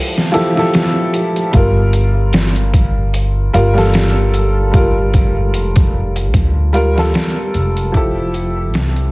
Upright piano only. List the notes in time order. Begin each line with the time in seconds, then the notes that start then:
Already playing: F3 E4 G4 A4
0.32 F3 E4 G4 A4
0.54 F3 E4 G4
0.59 A4
1.51 G3 F4
1.57 A#4
3.53 G3 F4 A#4
3.74 G3 F4
3.78 A4
4.71 G3 F4
4.76 A#4
6.73 G3 F4 A#4
6.94 G3 F4
6.99 A4
7.92 F3 E4 G4
7.97 A4